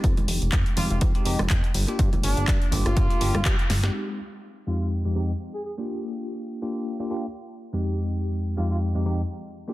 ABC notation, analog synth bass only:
X:1
M:4/4
L:1/16
Q:"Swing 16ths" 1/4=123
K:Fdor
V:1 name="Analog synth bass" clef=bass
F,, z F,,, F,,, F,, z F,,, F,,, F,, z F,,, F,,, F,, z G,,, z | G,, z G,,, G,,, G,, z G,,, G,,, G,, z G,,, G,,, G,, z G,,,2 | z16 | z16 |
z16 |]